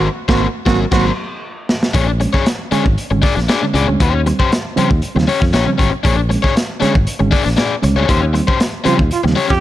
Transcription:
0.28 fingered electric bass G#1, reed electric piano A#3 C4, trombone F#4, overdriven electric guitar F#4 A#4 C5, kick, snare
0.66 fingered electric bass G#1, reed electric piano F#3 A#3 C4, overdriven electric guitar F#4 A#4, trombone F#4, kick, snare
0.91 fingered electric bass G#1, reed electric piano F#3 A#3 C4, overdriven electric guitar F#4 A#4 C5, trombone F#4, kick, snare, crash
1.69 snare
1.83 snare
1.94 fingered electric bass A#1, reed electric piano A#2, overdriven electric guitar D4 G#4 C#5, kick, closed hi-hat
2.08 muted overdriven electric guitar stroke
2.20 reed electric piano G#3 C#4, muted overdriven electric guitar stroke, closed hi-hat
2.33 overdriven electric guitar D4 G#4 C#5, kick, snare
2.46 muted overdriven electric guitar stroke, snare, closed hi-hat
2.71 reed electric piano D3 G#3 C#4, overdriven electric guitar D4 G#4 C#5, muted fingered electric bass stroke, snare, closed hi-hat
2.85 fingered electric bass G#1, muted overdriven electric guitar stroke, kick
2.98 closed hi-hat
3.11 fingered electric bass G#1, reed electric piano D3 G#3 C#4, muted overdriven electric guitar stroke
3.22 overdriven electric guitar D4 G#4 D5, kick, snare, open hi-hat
3.36 fingered electric bass A#1, reed electric piano A#2, muted overdriven electric guitar stroke, snare
3.48 overdriven electric guitar D4 G#4 D5, snare, closed hi-hat
3.62 reed electric piano D3 G#3 C#4, muted overdriven electric guitar stroke
3.74 fingered electric bass C#2, reed electric piano A#2, overdriven electric guitar D4 G#4 D5, closed hi-hat
3.88 fingered electric bass D2, reed electric piano D3 G#3 C#4, muted overdriven electric guitar stroke
4.00 fingered electric bass D#2, overdriven electric guitar C#4 G4 C5, kick, closed hi-hat
4.14 muted overdriven electric guitar stroke
4.26 reed electric piano G3 C4, muted overdriven electric guitar stroke, closed hi-hat
4.39 overdriven electric guitar C#4 G4 C5, kick
4.52 muted overdriven electric guitar stroke, snare, closed hi-hat
4.76 reed electric piano C#3 F3 G3 C4, overdriven electric guitar C#4 G4 C5, muted fingered electric bass stroke, closed hi-hat
4.90 fingered electric bass D#2, muted overdriven electric guitar stroke, kick
5.02 closed hi-hat
5.15 fingered electric bass D#2, reed electric piano C#3 F3 G3 C4, muted overdriven electric guitar stroke, snare
5.28 overdriven electric guitar C#4 G4 C#5, open hi-hat
5.41 fingered electric bass F2, muted overdriven electric guitar stroke, kick, snare
5.53 fingered electric bass A#1, overdriven electric guitar C#4 G4 C#5, snare, closed hi-hat
5.66 reed electric piano C#3 F3 G3 C4, muted overdriven electric guitar stroke
5.78 fingered electric bass G#1, overdriven electric guitar C#4 G4 C#5, kick, snare, closed hi-hat
5.92 muted overdriven electric guitar stroke
6.03 fingered electric bass A#1, reed electric piano A#2, overdriven electric guitar D4 G#4 C#5, kick, closed hi-hat
6.17 muted overdriven electric guitar stroke
6.29 reed electric piano G#3 C#4, muted overdriven electric guitar stroke, closed hi-hat
6.43 overdriven electric guitar D4 G#4 C#5, kick, snare
6.55 muted overdriven electric guitar stroke, snare, closed hi-hat
6.80 reed electric piano D3 G#3 C#4, overdriven electric guitar D4 G#4 C#5, muted fingered electric bass stroke, snare, closed hi-hat
6.94 fingered electric bass G#1, muted overdriven electric guitar stroke, kick
7.07 closed hi-hat
7.19 fingered electric bass G#1, reed electric piano D3 G#3 C#4, muted overdriven electric guitar stroke
7.31 overdriven electric guitar D4 G#4 D5, kick, snare, open hi-hat
7.45 fingered electric bass A#1, reed electric piano A#2, muted overdriven electric guitar stroke, snare
7.57 reed electric piano A#2, overdriven electric guitar D4 G#4 D5, snare, closed hi-hat
7.82 fingered electric bass C#2, reed electric piano D3 G#3 C#4, muted overdriven electric guitar stroke, closed hi-hat
7.96 fingered electric bass D2, reed electric piano G#3 C#4, overdriven electric guitar D4 G#4 C#5
8.08 fingered electric bass D#2, overdriven electric guitar C#4 G4 C5, kick, closed hi-hat
8.22 muted overdriven electric guitar stroke
8.33 reed electric piano G3 C4, muted overdriven electric guitar stroke, closed hi-hat
8.48 overdriven electric guitar C#4 G4 C5, kick
8.60 muted overdriven electric guitar stroke, snare, closed hi-hat
8.84 reed electric piano C#3 F3 G3 C4, overdriven electric guitar C#4 G4 C5, trombone F4, muted fingered electric bass stroke, closed hi-hat
8.98 fingered electric bass D#2, muted overdriven electric guitar stroke, kick
9.11 trombone F4, closed hi-hat
9.24 fingered electric bass D#2, reed electric piano C#3 F3 G3 C4, muted overdriven electric guitar stroke, snare
9.36 overdriven electric guitar C#4 G4 C#5, open hi-hat
9.49 fingered electric bass F2, trombone G4, muted overdriven electric guitar stroke, kick, snare

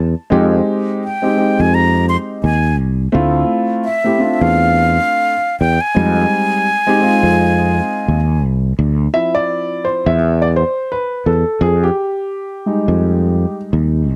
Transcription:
Already playing: fretless electric bass E2
0.30 fretless electric bass F2, grand piano G#3 C4 D#4 G4
1.04 flute G5
1.22 grand piano G#3 C4 D#4 G4
1.36 grand piano G#3 C4 D#4 G4
1.60 fretless electric bass F2, flute G#5
1.74 flute A#5
2.09 flute C6
2.44 fretless electric bass D#2, flute G#5
2.79 fretless electric bass C2
3.12 fretless electric bass D2, grand piano A3 C4 E4 F4
3.85 flute E5
4.04 grand piano A3 C4 E4 G4
4.19 grand piano A3 C4 D4 F4
4.33 flute E5
4.41 fretless electric bass E2, flute F5
5.60 fretless electric bass E2, flute G5
5.81 flute G#5
5.95 fretless electric bass F2, grand piano G3 G#3 C4 D#4
6.87 grand piano G#3 C4 D#4 G4
7.01 grand piano G#3 C4 D#4 F4
7.23 fretless electric bass F2
8.08 fretless electric bass D#2
8.44 fretless electric bass C2
8.79 fretless electric bass D2
9.13 grand piano F3 C4 E4 E5
9.35 grand piano D5
9.85 grand piano C5
10.06 fretless electric bass E2, grand piano E5
10.42 grand piano D5
10.56 grand piano C5
10.92 grand piano B4
11.26 fretless electric bass E2, grand piano A4
11.61 fretless electric bass F2, grand piano G#4
11.83 grand piano G4
12.66 grand piano G3 G#3 D#4
12.88 fretless electric bass F2
13.73 fretless electric bass D#2
14.09 fretless electric bass C2

